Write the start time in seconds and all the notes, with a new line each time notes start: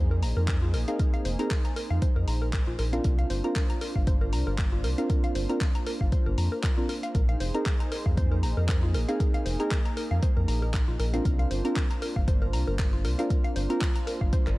Already playing: F2 A#3 D#4 G#4 C5
0.11 A#4
0.23 A#1 A#5, open hi-hat
0.37 F2 A#4
0.48 A#4, kick, clap, closed hi-hat
0.62 F4
0.74 A#1 A#4, open hi-hat
0.87 C4 D#4 G#4 A#4 F5, closed hi-hat
0.99 A#4, kick, closed hi-hat
1.14 F5, closed hi-hat
1.25 F1 C5, open hi-hat
1.39 C4 D#4 G#4 A#4 A#5, closed hi-hat
1.50 A#4, kick, clap, closed hi-hat
1.65 A#5, closed hi-hat
1.76 A#4, open hi-hat
1.90 F2 F5
2.02 C5, kick, closed hi-hat
2.16 F2 A#4
2.28 A#1 A#5, open hi-hat
2.42 A#4
2.53 A#4, kick, clap, closed hi-hat
2.67 A#1 F4
2.79 A#1 A#4, open hi-hat
2.93 C4 D4 F4 A#4 F5, closed hi-hat
3.04 C2 A#3 D4 F4 A#4, kick, closed hi-hat
3.19 F5, closed hi-hat
3.30 G1 C5, open hi-hat
3.44 C4 D4 F4 A#4 A#5, closed hi-hat
3.56 A#4, kick, clap, closed hi-hat
3.70 A#5, closed hi-hat
3.81 A#4, open hi-hat
3.96 G1 F5, kick
4.07 C5, kick, closed hi-hat
4.21 A#4
4.33 C2 A#5, open hi-hat
4.47 G1 A#4
4.58 A#4, kick, clap, closed hi-hat
4.73 F4
4.84 C2 A#4, open hi-hat
4.98 C4 D4 F4 A#4 F5, closed hi-hat
5.10 A#4, kick, closed hi-hat
5.24 F5, closed hi-hat
5.35 G1 C5, open hi-hat
5.49 C4 D4 F4 A#4 A#5, closed hi-hat
5.61 A#4, kick, clap, closed hi-hat
5.75 A#5, closed hi-hat
5.87 A#4, open hi-hat
6.01 G1 F5, kick
6.12 C5, kick, closed hi-hat
6.26 G1 A#4
6.38 F2 A#5, open hi-hat
6.52 A#4
6.63 A#4, kick, clap, closed hi-hat
6.77 C4 D4 F4 A#4
6.89 A#4, open hi-hat
7.03 F5, closed hi-hat
7.15 A#1 D#4 G#4 A#4 C5, kick, closed hi-hat
7.29 F5, closed hi-hat
7.40 F1 C5, open hi-hat
7.54 C4 D#4 G#4 A#4 A#5, closed hi-hat
7.66 A#4, kick, clap, closed hi-hat
7.80 A#5, closed hi-hat
7.92 A#4, open hi-hat
8.06 F2 F5, kick
8.17 C5, kick, closed hi-hat
8.32 A#4
8.43 A#1 A#5, open hi-hat
8.57 F2 A#4
8.68 A#4, kick, clap, closed hi-hat
8.83 F4
8.94 A#1 A#4, open hi-hat
9.08 C4 D#4 G#4 A#4 F5, closed hi-hat
9.20 A#4, kick, closed hi-hat
9.34 F5, closed hi-hat
9.46 F1 C5, open hi-hat
9.59 C4 D#4 G#4 A#4 A#5, closed hi-hat
9.71 A#4, kick, clap, closed hi-hat
9.85 A#5, closed hi-hat
9.97 A#4, open hi-hat
10.11 F2 F5
10.23 C5, kick, closed hi-hat
10.37 F2 A#4
10.48 A#1 A#5, open hi-hat
10.62 A#4
10.74 A#4, kick, clap, closed hi-hat
10.88 A#1 F4
10.99 A#1 A#4, open hi-hat
11.13 C4 D4 F4 A#4 F5, closed hi-hat
11.25 C2 D4 F4 A#4 C5, kick, closed hi-hat
11.39 F5, closed hi-hat
11.51 G1 C5, open hi-hat
11.64 C4 D4 F4 A#4 A#5, closed hi-hat
11.76 A#4, kick, clap, closed hi-hat
11.91 A#5, closed hi-hat
12.02 A#4, open hi-hat
12.16 G1 F5, kick
12.28 C5, kick, closed hi-hat
12.42 A#4
12.53 C2 A#5, open hi-hat
12.67 G1 A#4
12.79 A#4, kick, clap, closed hi-hat
12.93 F4
13.05 C2 A#4, open hi-hat
13.18 C4 D4 F4 A#4 F5, closed hi-hat
13.30 A#4, kick, closed hi-hat
13.44 F5, closed hi-hat
13.56 G1 C5, open hi-hat
13.70 C4 D4 F4 A#4 A#5, closed hi-hat
13.81 A#4, kick, clap, open hi-hat
13.96 A#5, closed hi-hat
14.07 A#4, open hi-hat
14.21 G1 F5, kick
14.33 C5, kick, closed hi-hat
14.47 G1 A#4, clap, closed hi-hat